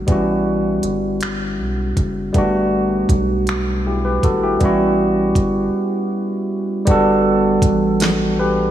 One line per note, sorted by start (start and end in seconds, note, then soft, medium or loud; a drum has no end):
0.07 0.80 A1 medium
0.07 2.30 G3 medium
0.07 2.30 B3 medium
0.07 2.31 C#4 medium
0.07 kick medium
0.07 closed hi-hat medium
0.11 2.32 E4 medium
0.11 2.32 F#4 medium
0.83 1.61 G1 medium
0.83 closed hi-hat medium
1.21 finger snap medium
1.21 closed hi-hat medium
1.59 1.93 B1 medium
1.97 2.31 F#1 medium
1.97 kick medium
1.97 closed hi-hat medium
2.32 3.06 G1 medium
2.32 4.56 G3 medium
2.32 4.56 A3 medium
2.32 4.57 B3 medium
2.32 kick medium
2.32 closed hi-hat medium
2.36 4.58 D4 medium
2.36 3.84 F#4 medium
3.09 4.19 B1 loud
3.09 kick medium
3.09 closed hi-hat medium
3.47 finger snap medium
3.47 closed hi-hat medium
3.87 4.04 E4 soft
3.87 4.04 G4 medium
4.05 4.23 G4 soft
4.05 4.22 B4 medium
4.23 4.57 G#1 medium
4.23 4.42 F#4 soft
4.23 4.42 A4 medium
4.23 kick medium
4.23 closed hi-hat medium
4.43 4.63 E4 medium
4.43 4.78 G4 medium
4.60 5.33 A1 medium
4.60 6.83 G3 medium
4.60 6.83 B3 medium
4.60 6.84 C#4 medium
4.60 kick medium
4.60 closed hi-hat medium
4.64 6.85 E4 medium
4.64 6.85 F#4 medium
5.35 5.70 G1 medium
5.35 kick medium
5.35 closed hi-hat medium
6.86 7.64 G1 loud
6.86 8.71 G3 medium
6.86 8.71 B3 medium
6.86 8.71 D4 medium
6.86 kick loud
6.86 closed hi-hat medium
6.90 8.36 F#4 medium
6.90 8.37 A4 medium
7.62 8.71 A1 medium
7.62 kick medium
7.62 closed hi-hat medium
8.00 snare loud
8.00 closed hi-hat medium
8.39 8.71 G4 medium
8.39 8.71 B4 medium